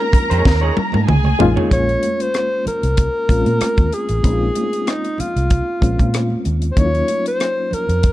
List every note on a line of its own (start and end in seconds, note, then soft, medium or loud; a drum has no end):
0.00 0.16 G#3 medium
0.00 0.16 A#3 medium
0.00 0.16 C#4 medium
0.00 0.17 D#4 medium
0.00 0.17 F4 medium
0.00 1.04 A#4 medium
0.00 1.09 A#4 loud
0.00 1.04 A#5 medium
0.00 muted clean electric guitar stroke soft
0.12 muted fingered electric bass stroke soft
0.12 kick medium
0.12 closed hi-hat medium
0.12 muted conga soft
0.12 low conga medium
0.30 0.42 F2 medium
0.30 0.43 D#4 medium
0.30 0.44 G#4 medium
0.30 0.45 C#5 medium
0.30 closed hi-hat medium
0.45 0.69 D#2 medium
0.45 muted clean electric guitar stroke soft
0.45 kick loud
0.45 snare medium
0.61 0.75 D#4 medium
0.61 0.75 G#4 medium
0.61 0.76 C#5 medium
0.76 muted clean electric guitar stroke soft
0.76 muted fingered electric bass stroke soft
0.76 high tom medium
0.92 1.05 G#2 loud
0.92 muted clean electric guitar stroke soft
0.92 high tom medium
0.92 high conga medium
1.07 1.32 C#2 medium
1.07 1.70 G#4 medium
1.07 1.70 G#5 medium
1.07 muted clean electric guitar stroke soft
1.07 mid tom loud
1.07 muted conga soft
1.07 high conga medium
1.24 muted clean electric guitar stroke soft
1.24 high conga medium
1.39 1.53 A1 medium
1.39 1.64 G#3 loud
1.39 1.64 A#3 medium
1.39 1.65 C#4 medium
1.39 1.65 D#4 medium
1.39 1.65 F4 loud
1.39 floor tom loud
1.56 1.77 D#4 medium
1.56 1.77 G#4 medium
1.56 1.76 C#5 medium
1.56 floor tom medium
1.70 1.95 A#1 medium
1.70 2.68 G#3 medium
1.70 2.69 A#3 medium
1.70 2.69 C#4 medium
1.70 2.70 F4 medium
1.70 2.23 C#5 loud
1.70 kick medium
1.70 closed hi-hat medium
1.70 low conga medium
1.89 closed hi-hat soft
2.03 closed hi-hat medium
2.03 muted conga soft
2.03 high conga medium
2.20 2.67 C5 medium
2.20 closed hi-hat medium
2.34 cross-stick medium
2.34 closed hi-hat medium
2.65 3.95 A#4 medium
2.65 muted fingered electric bass stroke soft
2.65 closed hi-hat medium
2.65 low conga medium
2.83 3.07 C2 medium
2.83 closed hi-hat soft
2.97 kick medium
2.97 closed hi-hat medium
2.97 muted conga soft
3.28 3.42 A#1 medium
3.28 4.03 G#3 medium
3.28 4.03 A#3 medium
3.28 4.03 C4 medium
3.28 4.04 C#4 medium
3.28 4.04 F4 medium
3.28 kick medium
3.28 closed hi-hat medium
3.28 muted conga soft
3.45 3.57 A#2 medium
3.45 closed hi-hat soft
3.45 high conga medium
3.61 muted fingered electric bass stroke soft
3.61 cross-stick medium
3.61 closed hi-hat medium
3.61 muted conga soft
3.61 high conga soft
3.77 3.89 D#2 medium
3.77 kick medium
3.77 closed hi-hat soft
3.77 high conga medium
3.92 4.90 G#4 medium
3.92 closed hi-hat soft
4.09 4.20 A1 medium
4.09 closed hi-hat soft
4.23 4.48 A#1 medium
4.23 5.21 G#3 medium
4.23 5.22 A#3 medium
4.23 5.22 C4 medium
4.23 5.22 C#4 medium
4.23 4.32 D#4 medium
4.23 kick medium
4.23 closed hi-hat medium
4.23 low conga medium
4.32 5.26 F4 medium
4.55 closed hi-hat medium
4.55 muted conga soft
4.55 high conga medium
4.73 closed hi-hat soft
4.87 5.22 D#4 medium
4.87 cross-stick medium
4.87 closed hi-hat medium
5.04 closed hi-hat soft
5.18 6.46 F4 medium
5.18 muted fingered electric bass stroke soft
5.18 closed hi-hat medium
5.18 muted conga soft
5.18 low conga medium
5.36 5.60 C2 medium
5.36 closed hi-hat soft
5.50 kick medium
5.50 closed hi-hat medium
5.50 muted conga soft
5.81 5.95 A#1 medium
5.81 6.55 G#3 medium
5.81 6.56 A#3 medium
5.81 6.56 C4 medium
5.81 6.57 C#4 medium
5.81 6.57 F4 medium
5.81 kick medium
5.81 closed hi-hat medium
5.81 muted conga soft
5.99 6.34 A#2 medium
5.99 kick medium
5.99 closed hi-hat soft
5.99 high conga medium
6.14 cross-stick loud
6.14 closed hi-hat medium
6.14 muted conga soft
6.14 high conga soft
6.30 high conga medium
6.45 6.70 D#2 medium
6.45 closed hi-hat soft
6.45 muted conga soft
6.62 closed hi-hat soft
6.71 6.80 C5 medium
6.76 7.01 D#2 medium
6.76 7.74 F#3 medium
6.76 7.74 A#3 medium
6.76 7.75 C#4 medium
6.76 7.75 D#4 medium
6.76 6.85 E4 medium
6.76 7.27 C#5 medium
6.76 kick medium
6.76 closed hi-hat medium
6.76 muted conga soft
6.76 low conga medium
6.85 7.79 F4 medium
6.95 closed hi-hat soft
7.08 closed hi-hat medium
7.08 high conga medium
7.26 7.75 C5 medium
7.26 closed hi-hat soft
7.40 cross-stick medium
7.40 closed hi-hat medium
7.71 8.13 A#4 medium
7.71 muted fingered electric bass stroke soft
7.71 closed hi-hat medium
7.71 low conga medium
7.89 8.13 F2 medium
7.89 closed hi-hat soft
8.03 kick medium
8.03 closed hi-hat medium